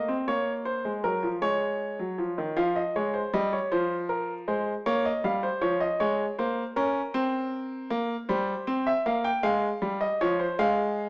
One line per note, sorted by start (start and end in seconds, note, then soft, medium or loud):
0.00 0.13 D#5 medium
0.08 0.27 C4 medium
0.28 0.84 A#3 medium
0.28 0.52 C#5 loud
0.65 0.89 C5 medium
0.85 1.04 G#3 medium
1.04 1.23 F#3 medium
1.04 1.28 A#4 medium
1.23 1.42 F3 medium
1.42 1.98 G#3 medium
1.42 2.53 C#5 loud
1.99 2.18 F#3 medium
2.18 2.37 F3 medium
2.38 2.56 D#3 medium
2.57 2.80 F3 loud
2.57 2.75 F5 medium
2.76 2.94 D#5 medium
2.96 3.19 G#3 medium
2.96 3.14 C#5 medium
3.14 3.33 C5 medium
3.33 3.57 G3 loud
3.33 3.52 D#5 medium
3.53 3.71 C#5 medium
3.72 4.46 F3 loud
3.72 3.95 C5 medium
4.09 4.33 A#4 medium
4.48 4.71 G#3 medium
4.48 4.71 C5 medium
4.86 5.10 A#3 loud
4.86 5.04 C#5 medium
5.05 5.24 D#5 medium
5.24 5.48 G3 medium
5.24 5.43 F5 medium
5.43 5.62 C5 medium
5.61 5.85 F3 loud
5.61 5.80 C#5 medium
5.80 5.99 D#5 medium
6.00 6.24 G#3 loud
6.00 6.24 C#5 medium
6.39 6.62 A#3 loud
6.39 6.62 C5 medium
6.76 7.00 C#4 loud
6.76 8.25 A#4 medium
7.14 7.88 C4 loud
7.90 8.14 A#3 loud
8.29 8.53 G3 loud
8.29 8.84 C5 medium
8.67 8.91 C4 loud
8.87 9.05 E5 medium
9.06 9.29 A#3 loud
9.06 9.24 F5 medium
9.24 9.43 G5 medium
9.43 9.67 G#3 loud
9.43 9.99 F5 loud
9.82 10.06 G3 loud
10.01 10.19 D#5 medium
10.21 10.45 F3 loud
10.21 10.39 C#5 medium
10.40 10.58 C5 medium
10.59 11.09 G#3 loud
10.59 11.09 F5 loud